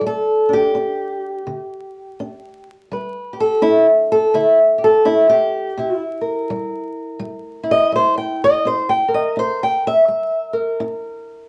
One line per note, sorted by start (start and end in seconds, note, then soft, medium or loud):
0.01 0.68 G3 medium
0.07 0.53 A4 medium
0.49 0.74 D4 soft
0.53 2.67 G4 loud
0.75 1.41 D4 medium
1.47 2.13 D3 medium
2.20 2.85 D4 medium
2.92 3.57 G3 medium
2.92 3.39 B4 soft
3.33 3.62 G4 soft
3.40 3.63 A4 loud
3.62 4.28 D4 medium
3.62 3.86 E4 loud
4.12 4.35 A4 loud
4.34 5.00 D3 medium
4.34 4.58 E4 loud
4.78 5.05 G4 medium
4.84 5.07 A4 medium
5.05 5.72 D4 medium
5.05 5.29 E4 loud
5.30 6.01 G4 loud
5.77 6.44 C3 medium
5.77 7.63 E4 soft
6.21 8.66 A#4 soft
6.50 7.16 G3 medium
7.19 7.87 G3 medium
7.63 9.08 E4 medium
7.71 7.94 D#5 loud
7.92 8.59 G3 medium
7.92 8.17 C5 loud
8.18 8.42 G5 medium
8.44 8.67 D#5 loud
8.65 9.32 C4 medium
8.65 8.90 C5 medium
8.89 9.13 G5 medium
9.08 10.52 A#4 soft
9.14 9.38 D#5 medium
9.37 10.04 E4 medium
9.37 9.62 C5 loud
9.63 9.86 G5 medium
9.87 10.59 E5 loud
10.08 10.76 G3 medium
10.53 11.49 A#4 medium
10.80 11.48 E4 medium